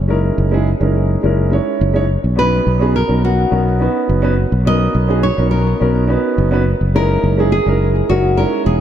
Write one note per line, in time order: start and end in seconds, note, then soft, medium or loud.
0.00 0.30 F#1 medium
0.08 0.48 G#3 medium
0.08 0.48 C#4 medium
0.08 0.49 D#4 medium
0.08 0.49 E4 medium
0.08 0.49 A#4 medium
0.38 0.73 F#1 medium
0.51 0.66 G#3 medium
0.51 0.66 C#4 medium
0.51 0.67 D#4 medium
0.51 0.67 E4 medium
0.51 0.67 G#4 medium
0.80 1.15 F#1 medium
0.80 1.20 G#3 medium
0.80 1.20 C#4 medium
0.80 1.20 D#4 medium
0.80 1.21 E4 medium
0.80 1.21 A#4 medium
1.23 1.59 F#1 medium
1.23 1.48 G#3 medium
1.23 1.49 C#4 medium
1.23 1.49 D#4 medium
1.23 1.49 E4 medium
1.23 1.50 A#4 medium
1.51 1.91 G#3 medium
1.51 1.91 C#4 medium
1.51 1.92 D#4 medium
1.51 1.92 E4 medium
1.51 1.92 C#5 medium
1.81 2.16 F#1 loud
1.93 2.03 G#3 medium
1.93 2.03 C#4 medium
1.93 2.04 D#4 medium
1.93 2.04 E4 medium
1.93 2.04 C#5 loud
2.24 2.59 B1 medium
2.36 2.76 B3 medium
2.36 2.77 C#4 medium
2.36 2.77 D#4 medium
2.36 2.77 F#4 medium
2.36 2.78 B4 medium
2.36 2.95 B4 loud
2.67 3.01 B1 medium
2.79 2.94 B3 medium
2.79 2.95 C#4 medium
2.79 2.95 D#4 medium
2.79 2.95 F#4 medium
2.79 2.96 G#4 medium
2.96 3.22 A#4 medium
3.07 3.44 B1 medium
3.07 3.48 B3 medium
3.07 3.48 C#4 medium
3.07 3.49 D#4 medium
3.07 3.49 F#4 medium
3.07 3.49 A#4 medium
3.25 4.06 F#4 medium
3.50 3.87 B1 medium
3.50 3.76 B3 medium
3.50 3.77 C#4 medium
3.50 3.77 D#4 medium
3.50 3.77 F#4 medium
3.50 3.78 A#4 medium
3.79 4.19 B3 medium
3.79 4.20 C#4 medium
3.79 4.20 D#4 medium
3.79 4.20 F#4 medium
3.79 4.21 B4 medium
4.09 4.44 F#1 medium
4.22 4.32 B3 medium
4.22 4.32 C#4 medium
4.22 4.32 D#4 medium
4.22 4.33 F#4 medium
4.22 4.33 B4 loud
4.52 4.87 B1 medium
4.65 5.05 B3 medium
4.65 5.06 C#4 medium
4.65 5.06 D#4 medium
4.65 5.06 F#4 medium
4.65 5.07 A#4 medium
4.65 5.23 D#5 loud
4.95 5.30 B1 loud
5.08 5.23 B3 medium
5.08 5.23 C#4 medium
5.08 5.23 D#4 medium
5.08 5.24 F#4 medium
5.08 5.24 G#4 medium
5.23 5.50 C#5 medium
5.36 5.73 B1 medium
5.36 5.76 B3 medium
5.36 5.77 C#4 medium
5.36 5.77 D#4 medium
5.36 5.78 F#4 medium
5.36 5.78 A#4 medium
5.51 6.33 A#4 medium
5.80 6.16 B1 medium
5.80 6.05 B3 medium
5.80 6.06 C#4 medium
5.80 6.06 D#4 medium
5.80 6.06 F#4 medium
5.80 6.07 A#4 medium
6.08 6.48 B3 medium
6.08 6.48 C#4 medium
6.08 6.48 D#4 medium
6.08 6.49 F#4 medium
6.08 6.49 B4 medium
6.38 6.73 F#1 medium
6.51 6.60 B3 medium
6.51 6.61 C#4 medium
6.51 6.61 D#4 medium
6.51 6.61 F#4 medium
6.51 6.62 B4 loud
6.81 7.16 F#1 medium
6.94 7.34 G#3 medium
6.94 7.35 C#4 medium
6.94 7.35 D#4 medium
6.94 7.35 E4 medium
6.94 7.52 A#4 loud
6.94 7.35 A#4 medium
7.24 7.58 F#1 medium
7.37 7.52 G#3 medium
7.37 7.52 C#4 medium
7.37 7.53 D#4 medium
7.37 7.53 E4 medium
7.37 7.53 G#4 loud
7.52 8.11 G#4 medium
7.66 8.01 F#1 medium
7.66 8.06 G#3 medium
7.66 8.06 C#4 medium
7.66 8.06 D#4 medium
7.66 8.07 E4 medium
7.66 8.07 A#4 medium
8.09 8.44 F#1 medium
8.09 8.34 G#3 medium
8.09 8.35 C#4 medium
8.09 8.35 D#4 medium
8.09 8.35 E4 medium
8.09 8.39 F#4 medium
8.09 8.35 A#4 medium
8.37 8.77 G#3 medium
8.37 8.77 C#4 medium
8.37 8.77 D#4 medium
8.37 8.78 E4 medium
8.37 8.66 A#4 medium
8.37 8.78 C#5 medium
8.66 8.81 E1 medium
8.66 8.81 G#4 medium